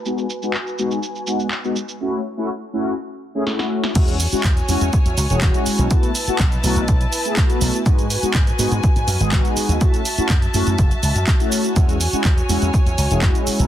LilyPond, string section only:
\new Staff \with { instrumentName = "String section" } { \time 4/4 \key e \major \tempo 4 = 123 << { <b' gis''>1 | r1 | <cis'' gis''>1 | <b' a''>1 |
<b' gis''>1 | <e'' a''>1 | <cis'' gis''>1 | } \\ { fis'1 | r1 | fis'1 | e'1 |
fis'1 | fis'1~ | fis'1 | } >> }